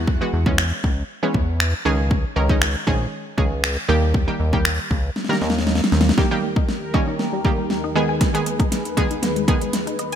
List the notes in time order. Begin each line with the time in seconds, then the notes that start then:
Already playing: E2 E3 G#3 B3 F#4
0.07 kick
0.21 E3 G#3 B3 F#4
0.33 E2
0.46 E3 G#3 B3 C#4, kick
0.58 finger snap
0.84 C#2, kick
1.23 E3 G#3 B3 C#4
1.34 E2, kick
1.60 finger snap
1.85 C#2 D#3 G#3 C#4 G#4
2.11 kick
2.36 C#2 D#3 G#3 C#4 A#4
2.49 D#3 G#3 C#4 D#4, kick
2.62 finger snap
2.87 A#1 D#3 G#3 C#4 G#4, kick
3.38 C#2 D#3 G#3 C#4 G#4, kick
3.64 finger snap
3.88 D#2 D#3 G3 A#3 G4
4.14 kick
4.27 D#3 G3 A#3 G4
4.40 D#2
4.53 D#3 G3 A#3 G4, kick
4.65 finger snap
4.91 C#2, kick
5.16 snare
5.25 snare
5.29 D#3 G3 A#3 A#4, snare
5.41 D#2, snare
5.50 snare
5.59 snare
5.67 snare
5.75 snare
5.84 snare
5.92 D#2, snare
6.01 snare
6.09 snare
6.18 D#2 D#3 G3 A#3 G4 A#4, kick, snare
6.31 D#3 G3 A#3 G4
6.43 A#3
6.56 D#4, kick
6.69 snare
6.94 D#3 G3 A#3 C#4 D#5, kick
7.07 D#4
7.19 A#3, snare
7.33 G3
7.45 D#3 G3 A#3 G4, kick
7.58 G3
7.70 snare
7.84 D#4
7.95 D#3 G#3 B3 G#4 B4 D#5
8.09 G#5
8.21 D#3, kick, snare, closed hi-hat
8.34 D#3 G#3 B3 G#4, closed hi-hat
8.46 B3, closed hi-hat
8.60 D#4, kick, closed hi-hat
8.72 snare, closed hi-hat
8.85 closed hi-hat
8.97 D#3 G#3 B3 G#4 D#5, kick, closed hi-hat
9.11 D#4, closed hi-hat
9.23 B3, snare, closed hi-hat
9.36 G#3, closed hi-hat
9.48 D#3 G#3 B3 G#4, kick, closed hi-hat
9.61 G#3, closed hi-hat
9.73 snare, closed hi-hat
9.87 D#4, closed hi-hat
9.99 D#5, closed hi-hat